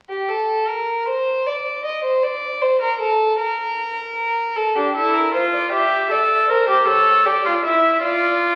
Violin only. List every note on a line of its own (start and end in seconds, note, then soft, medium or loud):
0.09 0.30 G4 medium
0.29 0.70 A4 medium
0.68 1.08 A#4 medium
1.08 1.48 C5 medium
1.47 1.85 D5 medium
1.85 2.03 D#5 medium
2.04 2.25 C5 medium
2.23 2.63 D5 medium
2.62 2.81 C5 medium
2.81 2.99 A#4 medium
3.00 3.38 A4 medium
3.40 4.58 A#4 medium
4.56 4.76 A4 medium
4.75 4.94 G4 medium
4.94 5.16 A4 medium
5.14 5.33 A#4 medium
5.34 5.41 C5 medium
5.53 5.72 D5 medium
5.73 6.13 E5 medium
6.11 6.49 D5 medium
6.50 6.87 C5 medium
6.88 7.27 C#5 medium
7.26 7.64 D5 medium
7.65 8.02 E5 medium
8.03 8.55 D5 medium